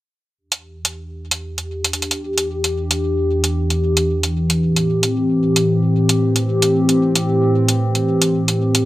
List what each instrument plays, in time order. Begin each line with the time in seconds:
0.38 analog synth pad E2 E3 D4 G4
0.52 closed hi-hat
0.85 closed hi-hat
1.31 closed hi-hat
1.58 closed hi-hat
1.84 closed hi-hat
1.93 closed hi-hat
2.02 closed hi-hat
2.11 closed hi-hat
2.38 closed hi-hat
2.64 closed hi-hat
2.91 closed hi-hat
3.44 closed hi-hat
3.70 closed hi-hat
3.97 closed hi-hat
4.23 closed hi-hat
4.50 closed hi-hat
4.63 analog synth pad A2 C4 G4
4.76 closed hi-hat
5.03 closed hi-hat
5.56 closed hi-hat
6.09 closed hi-hat
6.36 closed hi-hat
6.62 closed hi-hat
6.89 closed hi-hat
7.15 closed hi-hat
7.68 closed hi-hat
7.95 closed hi-hat
8.22 closed hi-hat
8.48 closed hi-hat
8.75 closed hi-hat